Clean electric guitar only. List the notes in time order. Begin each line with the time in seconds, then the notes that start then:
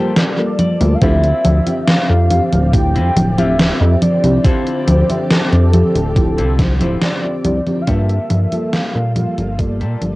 Already playing: A#3 F4 G4 A4 G5
0.16 F5
0.59 D5
1.02 C4 E4 F4 G4
2.52 muted clean electric guitar stroke
2.73 muted clean electric guitar stroke
2.95 C4 E4 F4 G4
3.38 C4 E4 F4 G4
4.44 C4 E4 F4 A4
5.95 muted clean electric guitar stroke
6.16 muted clean electric guitar stroke
6.38 C4 E4 F4 A4
6.80 C4 E4 F4 G4
7.87 A#3 F4 G4 A4
9.38 muted clean electric guitar stroke
9.59 muted clean electric guitar stroke
9.80 A#3 F4 G4 A4